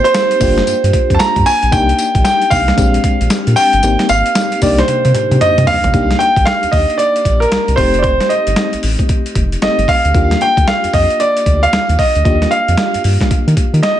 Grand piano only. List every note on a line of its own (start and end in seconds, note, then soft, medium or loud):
0.04 1.18 C5 loud
1.14 1.20 A5 medium
1.19 1.47 A#5 loud
1.46 1.73 G#5 loud
1.72 2.21 G5 loud
2.24 2.52 G5 loud
2.50 3.59 F5 loud
3.56 4.05 G5 loud
4.09 4.58 F5 loud
4.63 4.78 D5 medium
4.79 5.54 C5 medium
5.41 5.65 D#5 loud
5.67 6.16 F5 loud
6.19 6.46 G5 loud
6.45 6.73 F5 loud
6.72 6.96 D#5 medium
6.98 7.42 D5 loud
7.40 7.74 A#4 medium
7.76 7.99 C5 medium
7.99 8.30 C5 medium
7.99 8.04 D5 medium
8.29 8.79 D#5 medium
9.62 9.89 D#5 medium
9.89 10.43 F5 loud
10.42 10.66 G5 loud
10.68 10.95 F5 medium
10.94 11.21 D#5 medium
11.20 11.64 D5 medium
11.63 12.00 F5 loud
11.99 12.23 D#5 medium
12.25 12.52 D#5 medium
12.51 13.00 F5 medium
13.83 14.00 D#5 medium